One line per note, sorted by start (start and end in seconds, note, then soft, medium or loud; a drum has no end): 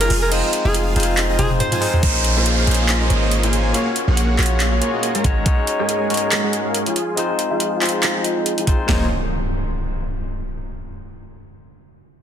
0.00 0.12 G#3 loud
0.00 0.12 C#4 medium
0.00 0.12 D#4 medium
0.00 0.29 F4 medium
0.00 0.12 F#4 medium
0.00 0.29 G#4 medium
0.00 0.15 A#4 loud
0.00 0.12 C#5 loud
0.00 0.29 G#5 loud
0.00 closed hi-hat medium
0.10 0.42 F1 medium
0.10 open hi-hat medium
0.22 0.31 A#4 loud
0.30 0.93 G#3 loud
0.30 0.93 C4 loud
0.30 0.94 D#4 medium
0.30 0.45 F4 loud
0.30 0.94 F4 loud
0.30 0.45 G#4 medium
0.30 0.95 C5 loud
0.30 0.45 D#5 loud
0.30 closed hi-hat medium
0.30 crash soft
0.53 closed hi-hat medium
0.65 0.95 F1 loud
0.65 0.94 F4 medium
0.65 0.94 G#4 medium
0.65 0.74 G#4 medium
0.65 0.94 F5 medium
0.74 closed hi-hat medium
0.95 1.37 F1 medium
0.95 1.36 G#3 medium
0.95 1.37 C4 medium
0.95 1.37 D#4 medium
0.95 1.26 F4 medium
0.95 1.37 F4 medium
0.95 1.26 G#4 medium
0.95 1.37 C5 loud
0.95 1.26 F5 medium
0.95 closed hi-hat medium
1.00 closed hi-hat medium
1.03 closed hi-hat medium
1.17 clap loud
1.17 closed hi-hat medium
1.29 1.37 F4 medium
1.29 1.37 G#4 medium
1.29 1.37 D#5 medium
1.38 1.59 F1 loud
1.38 1.79 G#3 medium
1.38 1.79 C4 medium
1.38 1.79 D#4 medium
1.38 1.52 F4 medium
1.38 1.80 F4 medium
1.38 1.50 G#4 medium
1.38 1.52 G#4 medium
1.38 1.80 C5 medium
1.38 1.52 G#5 medium
1.38 closed hi-hat medium
1.38 high tom medium
1.51 high tom medium
1.60 2.03 C5 loud
1.60 closed hi-hat medium
1.60 mid tom medium
1.72 1.91 F4 medium
1.72 1.91 G#4 medium
1.72 1.91 G#5 medium
1.72 closed hi-hat medium
1.72 mid tom medium
1.80 2.00 G#3 loud
1.80 2.00 C4 medium
1.80 2.01 D#4 medium
1.80 2.01 F4 medium
1.80 2.01 C5 loud
1.80 open hi-hat medium
1.94 mid tom medium
2.01 2.66 A#1 medium
2.01 2.64 A#3 medium
2.01 2.16 A#3 loud
2.01 2.64 C#4 medium
2.01 2.65 D#4 medium
2.01 2.16 F4 medium
2.01 2.16 G#4 medium
2.01 2.16 C5 medium
2.01 2.16 C#5 medium
2.01 2.16 D#5 loud
2.01 kick loud
2.01 closed hi-hat medium
2.01 downlifter medium
2.05 2.66 C5 medium
2.24 closed hi-hat medium
2.36 2.65 A#3 medium
2.36 2.65 F4 medium
2.36 2.65 G#4 medium
2.36 2.65 C5 medium
2.36 2.65 C#5 medium
2.36 2.65 F5 medium
2.46 closed hi-hat medium
2.65 3.09 A#1 medium
2.65 3.71 A#3 medium
2.65 2.98 A#3 medium
2.65 3.72 C#4 medium
2.65 3.72 D#4 medium
2.65 2.98 F4 medium
2.65 2.98 G#4 medium
2.65 3.73 G#4 medium
2.65 2.98 C5 medium
2.65 2.98 C#5 medium
2.65 2.98 F5 medium
2.65 closed hi-hat soft
2.69 3.73 C5 medium
2.69 closed hi-hat medium
2.74 closed hi-hat medium
2.89 clap loud
2.89 closed hi-hat medium
3.01 3.19 A#3 medium
3.01 3.19 F4 medium
3.01 3.19 G#4 medium
3.01 3.19 C5 medium
3.01 3.19 C#5 medium
3.01 3.19 D#5 medium
3.10 3.73 G#1 medium
3.10 closed hi-hat medium
3.22 3.41 A#3 medium
3.22 3.41 F4 medium
3.22 3.41 G#4 medium
3.22 3.41 C5 medium
3.22 3.41 C#5 medium
3.22 3.41 D#5 medium
3.32 closed hi-hat medium
3.43 3.72 A#3 medium
3.43 3.72 F4 medium
3.43 3.72 G#4 medium
3.43 3.72 C5 medium
3.43 3.72 C#5 medium
3.43 3.72 G#5 loud
3.43 closed hi-hat medium
3.53 closed hi-hat medium
3.72 4.35 A#3 loud
3.72 3.88 A#3 loud
3.72 4.36 C#4 medium
3.72 4.36 F4 medium
3.72 3.88 F#4 medium
3.72 4.37 F#4 medium
3.72 3.88 G#4 medium
3.72 3.88 C#5 medium
3.72 4.37 C#5 loud
3.72 3.88 F5 loud
3.72 closed hi-hat medium
3.96 closed hi-hat medium
4.08 4.37 A#1 loud
4.08 4.36 A#3 medium
4.08 4.36 F#4 medium
4.08 4.36 G#4 medium
4.08 4.36 C#5 medium
4.08 4.36 F#5 medium
4.17 closed hi-hat medium
4.38 4.80 A#1 medium
4.38 4.79 A#3 medium
4.38 4.69 A#3 medium
4.38 4.79 C#4 medium
4.38 4.80 F4 medium
4.38 4.69 F#4 medium
4.38 4.80 F#4 medium
4.38 4.69 G#4 medium
4.38 4.69 C#5 medium
4.38 4.80 C#5 medium
4.38 4.69 F#5 medium
4.38 clap medium
4.38 closed hi-hat soft
4.43 closed hi-hat medium
4.46 closed hi-hat medium
4.60 clap loud
4.60 closed hi-hat medium
4.72 4.91 A#3 medium
4.72 4.91 F#4 medium
4.72 4.91 G#4 medium
4.72 4.91 C#5 medium
4.72 4.91 F5 medium
4.81 5.22 A#3 medium
4.81 5.22 C#4 medium
4.81 5.22 F4 medium
4.81 5.22 F#4 medium
4.81 5.23 C#5 medium
4.81 closed hi-hat medium
4.93 5.12 A#3 medium
4.93 5.12 F#4 medium
4.93 5.12 G#4 medium
4.93 5.12 C#5 medium
4.93 5.12 D#5 medium
5.03 closed hi-hat medium
5.15 5.43 G#3 medium
5.15 5.44 G#4 medium
5.15 5.44 A#4 medium
5.15 5.43 C#5 medium
5.15 5.43 A#5 loud
5.15 closed hi-hat medium
5.23 5.44 G#1 medium
5.23 5.43 G#3 loud
5.23 5.43 C#4 medium
5.23 5.44 D#4 medium
5.23 5.44 F#4 medium
5.23 5.44 C#5 loud
5.23 kick medium
5.23 closed hi-hat medium
5.44 6.07 G#3 medium
5.44 5.59 G#3 loud
5.44 6.07 C#4 medium
5.44 6.08 D#4 medium
5.44 6.08 F#4 medium
5.44 5.59 G#4 medium
5.44 5.59 A#4 medium
5.44 5.59 C#5 medium
5.44 5.59 F#5 loud
5.44 kick loud
5.44 closed hi-hat medium
5.48 6.09 C#5 loud
5.67 closed hi-hat medium
5.79 6.08 G#3 medium
5.79 6.08 G#4 medium
5.79 6.08 A#4 medium
5.79 6.08 C#5 medium
5.79 6.08 G#5 medium
5.89 closed hi-hat medium
6.08 6.94 G#3 medium
6.08 6.41 G#3 medium
6.08 6.94 C#4 medium
6.08 6.95 D#4 medium
6.08 6.95 F#4 medium
6.08 6.41 G#4 medium
6.08 6.41 A#4 medium
6.08 6.41 C#5 medium
6.08 6.96 C#5 medium
6.08 6.41 G#5 medium
6.08 closed hi-hat soft
6.14 closed hi-hat medium
6.17 closed hi-hat medium
6.32 clap loud
6.32 closed hi-hat medium
6.43 6.62 G#3 medium
6.43 6.62 G#4 medium
6.43 6.62 A#4 medium
6.43 6.62 C#5 medium
6.43 6.62 F#5 medium
6.53 closed hi-hat medium
6.65 6.83 G#3 medium
6.65 6.83 G#4 medium
6.65 6.83 A#4 medium
6.65 6.83 C#5 medium
6.65 6.83 F5 medium
6.75 closed hi-hat medium
6.86 7.15 F4 medium
6.86 7.15 G#4 medium
6.86 7.15 G#5 loud
6.86 closed hi-hat medium
6.96 closed hi-hat medium
7.15 7.78 G#3 loud
7.15 7.79 C4 medium
7.15 7.79 D#4 medium
7.15 7.30 F4 loud
7.15 7.80 F4 medium
7.15 7.31 G#4 medium
7.15 7.31 D#5 loud
7.15 closed hi-hat medium
7.19 7.80 C5 loud
7.39 closed hi-hat medium
7.51 7.79 F4 medium
7.51 7.79 G#4 medium
7.51 7.79 F5 medium
7.60 closed hi-hat medium
7.80 8.22 G#3 medium
7.80 8.22 C4 medium
7.80 8.22 D#4 medium
7.80 8.12 F4 medium
7.80 8.23 F4 medium
7.80 8.12 G#4 medium
7.80 8.23 C5 medium
7.80 8.12 F5 medium
7.80 clap medium
7.80 closed hi-hat soft
7.86 closed hi-hat medium
7.89 closed hi-hat medium
8.03 clap loud
8.03 closed hi-hat medium
8.15 8.33 F4 medium
8.15 8.33 G#4 medium
8.15 8.33 D#5 medium
8.24 closed hi-hat medium
8.36 8.55 F4 medium
8.36 8.55 G#4 medium
8.36 8.55 C5 medium
8.46 closed hi-hat medium
8.58 8.86 F4 medium
8.58 8.86 G#4 medium
8.58 8.86 G#5 loud
8.58 closed hi-hat medium
8.66 8.86 G#3 medium
8.66 8.86 C4 medium
8.66 8.86 D#4 medium
8.66 8.87 F4 medium
8.66 8.87 C5 loud
8.66 kick medium
8.66 closed hi-hat medium
8.86 9.09 A#1 medium
8.86 9.04 A#3 medium
8.86 9.05 A#3 medium
8.86 9.04 C#4 medium
8.86 9.05 D#4 medium
8.86 9.05 F4 medium
8.86 9.05 G#4 medium
8.86 9.05 C5 medium
8.86 9.05 C#5 medium
8.86 9.05 D#5 loud
8.86 snare loud
8.86 floor tom loud
8.86 impact medium
8.90 9.06 G#4 medium
8.90 9.07 C5 medium